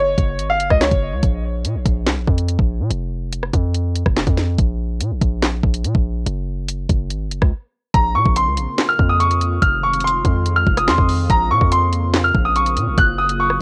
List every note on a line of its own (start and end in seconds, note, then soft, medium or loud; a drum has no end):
0.00 0.15 F#1 loud
0.00 0.46 C#5 medium
0.18 0.40 F#1 loud
0.18 kick medium
0.18 closed hi-hat medium
0.39 0.56 G#1 loud
0.39 closed hi-hat medium
0.50 0.68 F5 medium
0.55 0.70 F#1 loud
0.60 closed hi-hat medium
0.70 0.91 C#2 loud
0.70 0.80 D#5 medium
0.70 kick loud
0.70 cross-stick medium
0.81 1.20 C#5 medium
0.81 snare loud
0.81 clap medium
0.81 closed hi-hat medium
0.91 1.14 F#1 loud
0.91 kick loud
0.91 closed hi-hat medium
1.12 1.22 C#2 loud
1.23 1.66 A#1 loud
1.23 kick loud
1.23 closed hi-hat medium
1.65 1.77 A#2 loud
1.65 closed hi-hat loud
1.75 1.85 A#1 loud
1.86 2.08 A#1 loud
1.86 kick medium
1.86 closed hi-hat medium
2.07 2.19 C2 loud
2.07 snare loud
2.07 clap loud
2.07 closed hi-hat medium
2.17 2.27 A#1 medium
2.28 2.58 F2 loud
2.28 kick medium
2.38 closed hi-hat medium
2.49 closed hi-hat medium
2.59 2.82 A#1 loud
2.59 kick loud
2.80 2.90 A#2 loud
2.91 3.51 F1 loud
2.91 closed hi-hat medium
3.33 closed hi-hat loud
3.43 cross-stick medium
3.54 4.04 F2 loud
3.54 kick medium
3.54 closed hi-hat medium
3.75 closed hi-hat medium
3.96 closed hi-hat medium
4.06 4.26 F1 loud
4.06 kick loud
4.06 cross-stick medium
4.17 snare loud
4.17 clap loud
4.17 closed hi-hat medium
4.27 4.57 F2 loud
4.27 kick loud
4.27 closed hi-hat medium
4.37 snare medium
4.37 closed hi-hat medium
4.58 5.02 A#1 loud
4.58 kick loud
4.58 closed hi-hat medium
5.00 5.12 A#2 loud
5.00 closed hi-hat loud
5.11 5.21 A#1 loud
5.21 5.62 A#1 loud
5.21 kick medium
5.21 closed hi-hat medium
5.42 snare loud
5.42 clap loud
5.42 closed hi-hat medium
5.63 5.86 A#1 loud
5.63 kick loud
5.74 closed hi-hat medium
5.84 5.94 A#2 loud
5.84 closed hi-hat medium
5.95 6.25 A#1 loud
5.95 kick loud
6.26 6.87 F#1 loud
6.26 closed hi-hat medium
6.68 closed hi-hat loud
6.89 7.12 F#1 loud
6.89 kick medium
6.89 closed hi-hat medium
7.10 7.28 G#1 loud
7.10 closed hi-hat medium
7.26 7.41 F#1 loud
7.31 closed hi-hat medium
7.42 7.52 C#2 loud
7.42 kick loud
7.42 cross-stick loud
7.94 8.17 A#1 loud
7.94 9.60 C#3 medium
7.94 9.60 A#3 medium
7.94 12.94 C4 medium
7.94 12.94 F4 medium
7.94 8.12 A#5 medium
7.94 kick loud
7.94 closed hi-hat medium
8.15 8.25 A#2 medium
8.15 8.33 C#6 medium
8.26 8.48 A#1 loud
8.26 kick loud
8.36 8.86 C6 medium
8.36 closed hi-hat loud
8.47 8.59 C#2 loud
8.57 8.67 A#1 loud
8.57 closed hi-hat medium
8.78 snare loud
8.78 clap loud
8.78 closed hi-hat medium
8.89 9.07 F6 medium
8.99 9.59 F2 loud
8.99 kick medium
9.09 9.19 D#6 medium
9.20 9.59 C#6 medium
9.20 closed hi-hat medium
9.31 closed hi-hat medium
9.41 closed hi-hat medium
9.62 10.22 F1 loud
9.62 11.28 D#3 medium
9.62 11.28 G#3 medium
9.62 9.80 F6 medium
9.62 kick loud
9.62 closed hi-hat medium
9.83 10.01 C#6 medium
9.94 closed hi-hat soft
10.00 10.53 C6 medium
10.00 closed hi-hat medium
10.07 closed hi-hat medium
10.25 10.65 F2 loud
10.25 kick medium
10.25 closed hi-hat medium
10.46 closed hi-hat medium
10.56 10.74 F6 medium
10.67 10.89 F1 loud
10.67 kick medium
10.77 10.87 D#6 medium
10.77 cross-stick medium
10.77 closed hi-hat medium
10.88 10.98 F2 loud
10.88 11.28 C6 medium
10.88 snare loud
10.88 clap loud
10.98 11.29 F2 loud
10.98 kick loud
11.09 open hi-hat medium
11.30 11.52 A#1 loud
11.30 13.62 C#3 medium
11.30 13.62 A#3 medium
11.30 11.48 A#5 medium
11.30 kick loud
11.30 closed hi-hat medium
11.51 11.61 A#2 loud
11.51 11.69 C#6 medium
11.61 12.32 F2 loud
11.61 kick loud
11.72 12.21 C6 medium
11.72 closed hi-hat loud
11.93 closed hi-hat medium
12.14 snare loud
12.14 clap loud
12.14 closed hi-hat medium
12.24 12.42 F6 medium
12.35 12.78 A#1 loud
12.35 kick medium
12.45 12.54 D#6 medium
12.56 12.95 C#6 medium
12.56 closed hi-hat medium
12.66 closed hi-hat medium
12.77 12.89 A#2 loud
12.77 closed hi-hat medium
12.87 12.97 A#1 loud
12.98 13.58 F#1 loud
12.98 13.62 F#3 medium
12.98 13.62 F4 medium
12.98 13.16 F#6 medium
12.98 kick loud
12.98 closed hi-hat medium
13.18 13.37 D#6 medium
13.29 closed hi-hat medium
13.40 13.62 C#6 medium
13.50 cross-stick medium